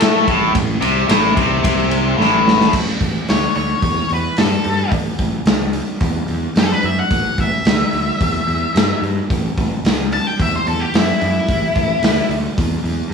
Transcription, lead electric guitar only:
3.29 C#5
3.56 C#5
4.14 B4
4.39 A4
6.59 A4
6.72 B4
6.85 E5
6.99 F#5
7.41 E5
10.13 A5
10.27 G5
10.42 E5
10.56 C5
10.68 A4
10.80 G4
10.96 E4
11.25 E4

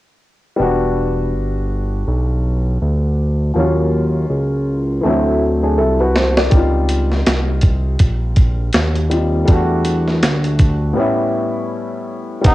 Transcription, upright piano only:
0.56 G3 B3 D4
0.62 F#4
3.54 F3 A#3 C#4
3.59 F#3 F4
5.01 E3 A3
5.05 F#3 C4 E4
5.63 D4 G#4
5.78 E4 A4
6.00 F#4 B4
6.16 F#4 C5
6.37 A4 D5
6.50 G3 C4
6.54 D#4 F4
9.10 G3 C4 D#4 F4
9.45 G3 A3 D4
9.52 F#4
10.93 A2 G3 B3
10.98 C#4 E4
12.41 G3 B3 D4
12.47 F#5

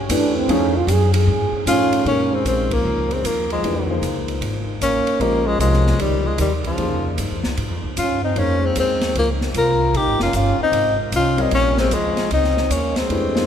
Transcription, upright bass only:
0.09 E2
0.48 F2
0.87 F#2
1.27 G#2
1.52 muted upright bass stroke
1.66 A2
2.05 A#2
2.45 A#1
2.85 C#2
3.24 D#2
3.63 F2
4.01 C#2
4.41 G#1
4.81 A1
5.06 muted upright bass stroke
5.20 A#1
5.59 C2
5.99 C#2
6.39 D#2
6.78 F2
7.18 G2
7.31 F2
7.45 C#2
7.57 G#2
7.70 F2
7.84 C#2
7.97 G2
8.36 F2
8.76 D#2
9.15 C#2
9.54 C2
9.93 A#1
10.06 G#1
10.20 F1
10.33 G1
10.58 muted upright bass stroke
10.72 G#1
11.12 C2
11.52 A#1
11.91 D2
12.16 muted upright bass stroke
12.30 C#2
12.70 D#2
13.09 F2

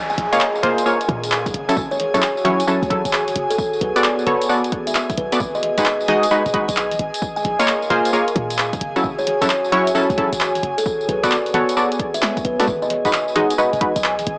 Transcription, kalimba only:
0.10 G#5
0.18 G#5
0.32 D#5
1.91 C#5
2.00 C#5
2.14 C#5
2.68 C#5
3.50 A4
3.81 B4
3.96 D5
4.04 D5
4.87 E5
4.95 E5
5.17 B4
5.32 B4
5.55 D#5
5.63 D#5
5.78 D#5
6.31 D#5
6.68 D#5
7.36 G#5
7.44 G#5
7.59 D#5
9.19 C#5
9.26 C#5
9.41 C#5
9.95 C#5
10.78 A4
11.08 B4
11.23 D5
11.31 D5
12.14 E5
12.22 E5
12.45 B4
12.60 B4
12.82 D#5
12.90 D#5
13.05 D#5
13.59 D#5
13.96 D#5

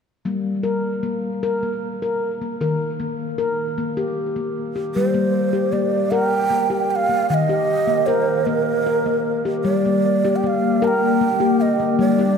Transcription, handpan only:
0.25 G3 A#3
0.63 A#4
1.03 A#3
1.43 A#4
1.63 A#3
2.02 A#4
2.42 A#3
2.61 D#3 A#4
3.00 A#3
3.38 A#4
3.78 A#3
3.97 G4
4.36 A#3
4.76 G4
4.96 G3
5.14 A#3
5.53 G4
5.73 A#3
6.12 A#4
6.51 A#3
6.70 G4
7.09 A#3
7.30 D#3
7.49 G4
7.87 A#3
8.08 A#4
8.47 A#3
8.86 A#4
9.06 A#3
9.45 G4
9.64 G3
9.86 A#3
10.25 G4
10.44 A#3
10.82 A#4
11.21 A#3
11.40 G4
11.80 A#3
11.99 G3
12.19 G4

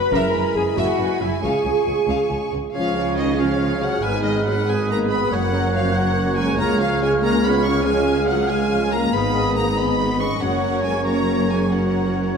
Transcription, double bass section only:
0.12 F#1
0.34 F#1
0.56 F#1
0.77 F#1
0.99 F#1
1.22 F#1
1.43 C#2
1.65 C#2
1.86 C#2
2.08 C#2
2.30 C#2
2.53 C#2
2.73 C#2
4.02 G#1
5.31 F#1
6.59 C#2
9.14 G#1
10.42 F#1

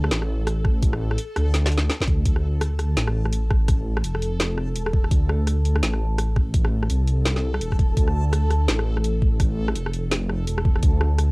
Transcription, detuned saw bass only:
Already playing: D2
0.11 A1
1.37 D2
2.08 D2
2.26 D2
2.97 A1
4.04 F1
4.75 E1
5.11 D2
5.83 A1
6.90 C2
7.61 E1
7.97 D2
8.69 A1
9.75 F1
10.47 E1
10.83 D2

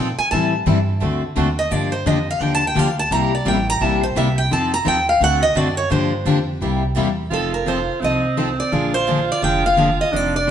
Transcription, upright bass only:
Already playing: A#2
0.18 muted upright bass stroke
0.32 A2
0.67 G2
1.02 D2
1.37 D#2
1.71 G2
2.06 F2
2.40 D#2
2.76 D2
3.11 C2
3.46 A1
3.81 A#1
4.16 C2
4.50 F2
4.86 D#2
5.21 D2
5.55 F#2
5.91 G2
6.25 F2
6.61 C2
6.96 E2
7.31 F1
8.02 C2
8.72 A#1
9.42 F1
10.13 F1

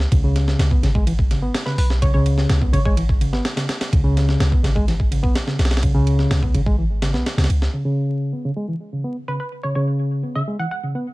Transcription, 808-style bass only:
0.12 C#2
0.59 C#2
0.83 G#1
1.78 B1
2.14 C#2
2.50 C#2
2.73 G#1
3.93 C#2
4.40 C#2
4.63 G#1
5.59 B1
5.95 C#2
6.31 C#2
6.55 G#1
7.14 B1
7.38 C#2
7.49 C#2

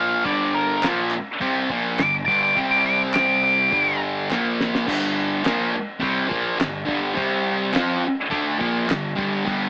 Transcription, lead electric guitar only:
Already playing: F5
0.25 D5
0.54 A#4
1.99 D6
2.26 D6
2.43 D6
2.71 D6
2.86 D6
3.14 D6
3.44 D6

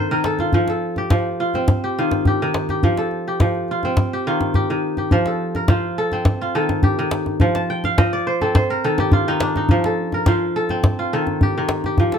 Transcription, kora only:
Already playing: D#3 C4 A4 A#4 C5 D#5
0.11 D#3 A#4
0.25 A4
0.40 F4
0.54 F3
0.70 A4
0.98 G4
1.11 F3
1.40 F4
1.55 C4
1.84 G4
1.99 D#3 F4
2.27 G4
2.42 D#3
2.70 G4
2.84 F3
2.98 A4
3.28 G4
3.41 F3
3.71 F4
3.85 C4
4.13 G4
4.27 D#3 F4
4.55 G4
4.70 D#3
4.98 G4
5.12 F3
5.27 A4
5.56 A#4
5.69 F3 F4
5.98 A4
6.13 C4
6.41 F4
6.55 D#3 A4
6.83 G4
6.99 D#3
7.41 F3
7.55 A5
7.70 G5
7.85 F5
7.98 F3 D#5
8.13 D5
8.27 C5
8.41 C4 A4
8.56 C5
8.70 A#4
8.84 D#3 A4
9.00 G4
9.13 F4
9.28 D#3 D#4
9.42 D4
9.57 D#4
9.71 F3
9.86 A4
10.14 A#4
10.27 F3 F4
10.56 A4
10.70 C4
10.99 F4
11.13 D#3 A4
11.43 G4
11.58 D#3
11.86 G4
11.99 F3
12.14 A4

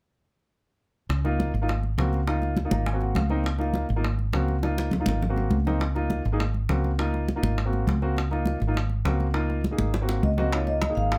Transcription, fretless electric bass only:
1.09 C#2
1.54 G#1
1.98 C#2
2.71 G#1
3.16 C#2
3.90 G#1
4.34 C#2
5.07 G#1
5.51 C#2
6.25 G#1
6.69 C#2
7.43 G#1
7.87 C#2
8.61 G#1
9.05 C#2
9.79 G#1
10.23 C#2
10.97 G#1

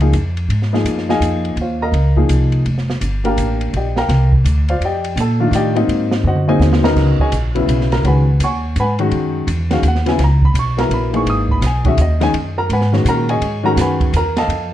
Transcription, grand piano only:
0.01 F3 A#3 D#4 G#4
0.73 F3 A#3 D#4 G#4
1.08 F3 A#3 D#4 G#4 D#5 F5 G#5
1.61 F4 C5 C#5 F5
1.82 A#4 D#5 F5 A#5
2.16 F3 A#3 D#4 G#4
3.24 A#3 D4 G4 A#4 F5 G5 A#5
3.77 G4 D5 D#5 G5
3.98 A#4 F5 G5 A#5
4.70 F4 C5 D5 F5
4.85 G4 D5 D#5 G5
5.20 A4 A5
5.40 D#3 A3 D4 F4
5.55 G4 D5 D#5 G5
5.75 F#3 A#3 C4 D#4
6.27 F#4 C5 D#5 F#5
6.48 F#3 A#3 C4 D#4 G#4 C5 D#5 G#5
6.82 C#3 F#3 B3 D#4 A#4 A#5
7.21 G#4 C#5 D#5 G#5
7.55 C#3 F#3 B3 E4
7.92 A#4 A#5
8.04 D#3 G#3 C#4 F#4 B4 F#5 G#5 B5
8.44 C#5 F#5 G#5 C#6
8.80 B4 F#5 G#5 B5
8.99 D#3 G#3 C#4 F#4
9.70 D#3 G#3 C#4 F#4 F5
9.88 F#5
10.06 C#3 F#3 B3 E4 G#5
10.24 A#5
10.45 B5
10.59 C#6
10.77 F#3 B3 E4 A#4 A#5
10.94 B5
11.13 E3 A#3 D#4 G#4 C#6
11.30 D#6
11.51 B5
11.67 G#5
11.85 D#3 G#3 C#4 F#4 E5
12.01 D#5
12.20 D#3 G#3 C#4 D#4 G#5
12.58 A#4 A#5
12.72 B4 F#5 G#5 B5
12.92 D#3 G#3 C#4 F#4
13.09 A#4 A#5
13.29 G#4 C#5 D#5 G#5
13.63 D#3 G#3 C#4 F#4 A#4 A#5
13.81 B4 F#5 G#5 B5
14.17 A#4 A#5
14.38 A4 D#5 F5 A5

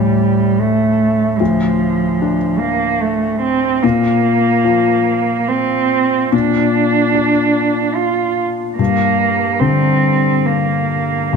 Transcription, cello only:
Already playing: G3
0.60 A3
1.39 F3
2.59 A#3
3.01 A3
3.41 C4
3.83 A#3
5.48 C4
6.31 D4
7.95 F4
8.77 A#3
9.59 C4
10.46 A#3

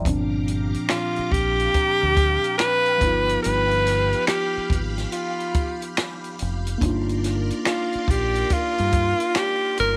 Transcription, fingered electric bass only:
0.06 G1
1.19 muted fingered electric bass stroke
1.33 A#1
1.76 muted fingered electric bass stroke
2.03 D2
3.03 G1
3.46 G1
4.57 muted fingered electric bass stroke
4.71 G#1
6.42 F1
6.83 G1
7.95 muted fingered electric bass stroke
8.09 A#1
8.52 muted fingered electric bass stroke
8.80 G2
9.80 G1

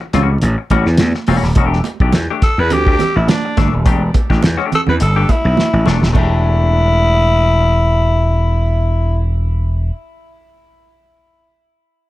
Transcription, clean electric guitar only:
0.01 muted clean electric guitar stroke
0.14 G3 C#4 F#4
0.29 muted clean electric guitar stroke
0.43 muted clean electric guitar stroke
0.58 muted clean electric guitar stroke
0.71 G3 C#4 F#4
0.87 muted clean electric guitar stroke
1.00 muted clean electric guitar stroke
1.16 muted clean electric guitar stroke
1.28 G3 C#4 F#4
1.44 muted clean electric guitar stroke
1.57 A3 D4 G4
1.86 muted clean electric guitar stroke
2.02 A3 D4 G4
2.15 muted clean electric guitar stroke
2.30 A3 D4 G4
2.59 muted clean electric guitar stroke
2.72 muted clean electric guitar stroke
2.88 A3 D4 G4
3.01 muted clean electric guitar stroke
3.16 muted clean electric guitar stroke
3.45 muted clean electric guitar stroke
3.57 A3 D4 A4
3.72 muted clean electric guitar stroke
3.86 A3 D4 G4
4.15 muted clean electric guitar stroke
4.30 A3 D4 G4
4.43 muted clean electric guitar stroke
4.57 A3 D4 G4
4.87 muted clean electric guitar stroke
5.01 muted clean electric guitar stroke
5.16 A3 D4 G4
5.29 muted clean electric guitar stroke
5.45 muted clean electric guitar stroke
5.73 muted clean electric guitar stroke
5.86 A3 D4 A4
6.02 muted clean electric guitar stroke
6.13 A3 D4
6.18 G4

